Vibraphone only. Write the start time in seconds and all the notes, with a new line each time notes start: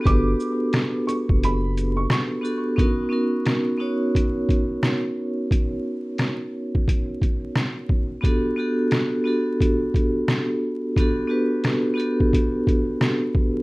Already playing: D4 F#4 G4 A4
0.00 B3 D4 F#4 G4
0.05 B4
2.41 B3 D4 F#4 G4 A4
2.76 B3 C#4 D#4 F#4 A#4
3.09 B3 C#4 D#4 F#4 A#4
3.77 B3 C#4 D#4 F#4 C#5
8.21 B3 D4 F#4 G4 A4
8.56 B3 D4 F#4 G4 A4
9.24 B3 D4 F#4 G4 A4
10.97 B3 D4 F#4 G4 A4
11.27 B3 D4 F#4 G4 B4
11.94 B3 D4 F#4 G4 A4